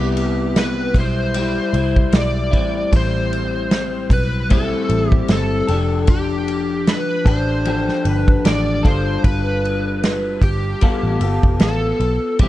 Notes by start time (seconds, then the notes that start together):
Already playing: C2 C3 G3 B3 E4 G4
0.17 ride
0.56 B4, snare, ride
0.94 B1 E4, kick, ride
0.99 G3 C5
1.34 G3 E4, ride
1.73 C2 E4, ride
1.77 G3
1.96 kick
2.12 B1, snare, ride
2.17 D5
2.51 A1 G3 C4 E4, kick, ride
2.56 A2
2.92 A1 C5, kick, ride
3.33 ride
3.71 snare, ride
4.10 B1 B4, kick, ride
4.49 A2 G3 C4 E4 A4, kick, ride
4.89 A1, ride
5.11 G4, kick
5.28 G1 A4, snare, ride
5.67 F1 D4 G4 A4, ride
5.72 F3
6.07 G4, kick, ride
6.48 ride
6.87 B4, snare, ride
7.25 A1 D4 G4 A4 C5, kick, ride
7.65 F3 D4 G4 A4, ride
7.88 snare
8.05 G1 B4, ride
8.28 kick
8.45 A1 D5, snare, ride
8.83 G1 F4 A4, kick, ride
8.87 G3 C5
9.24 G1 B4, kick, ride
9.65 ride
10.03 snare, ride
10.42 G1 G4, kick, ride
10.81 G3 B3 F4 A4, kick, ride
11.03 A1
11.20 G1 B3 F4 A4, ride
11.43 F1, kick
11.60 A1 A4, snare, ride
12.00 B1, ride
12.39 C2 E3 G3 B3 C4 G4, kick, ride
12.43 E4